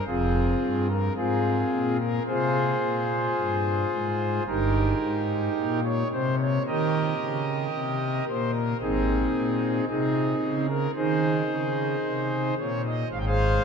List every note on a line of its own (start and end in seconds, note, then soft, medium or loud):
0.07 0.54 F1 medium
0.07 0.54 F2 medium
0.07 0.87 C4 medium
0.07 0.88 F4 medium
0.07 0.87 G#4 loud
0.62 1.09 G2 medium
0.90 1.13 A#4 medium
1.16 1.64 G#2 medium
1.16 1.97 C4 medium
1.16 1.97 F4 medium
1.16 1.97 G#4 loud
1.72 2.19 A#2 medium
1.99 2.23 A#4 loud
2.27 2.74 C3 medium
2.27 4.43 F4 medium
2.27 4.43 G#4 medium
2.27 4.43 C5 loud
2.82 3.29 A#2 medium
3.37 3.84 G2 medium
3.92 4.39 G#2 medium
4.47 4.94 G1 medium
4.47 4.94 G2 medium
4.47 5.80 D#4 medium
4.47 5.80 G4 medium
4.47 5.80 A#4 loud
5.02 5.48 G#2 medium
5.57 6.03 A#2 medium
5.85 6.08 C#5 loud
6.12 6.58 C3 medium
6.12 6.35 C5 loud
6.40 6.63 C#5 loud
6.67 7.13 D#3 medium
6.67 8.25 G4 medium
6.67 8.25 A#4 medium
6.67 8.25 D#5 loud
7.21 7.67 C#3 medium
7.75 8.20 C3 medium
8.29 8.74 A#2 medium
8.29 8.51 C5 loud
8.55 8.77 A#4 loud
8.81 9.27 G#1 medium
8.81 9.27 G#2 medium
8.81 9.85 C4 medium
8.81 9.85 D#4 medium
8.81 9.85 G#4 loud
9.35 9.80 A#2 medium
9.89 10.34 C3 medium
9.89 10.66 C4 medium
9.89 10.66 D#4 medium
9.89 10.66 G#4 loud
10.42 10.87 C#3 medium
10.69 10.91 A#4 loud
10.96 11.42 D#3 medium
10.96 12.54 D#4 medium
10.96 12.54 G#4 medium
10.96 12.54 C5 loud
11.50 11.96 C#3 medium
12.05 12.50 C3 medium
12.59 13.04 A#2 medium
12.59 12.81 C#5 loud
12.86 13.08 D#5 loud
13.12 13.57 G#1 medium
13.12 13.57 G#2 medium
13.12 13.18 F5 loud
13.19 13.24 G5 loud
13.26 13.64 G#4 medium
13.26 13.64 C5 medium
13.26 13.64 F5 loud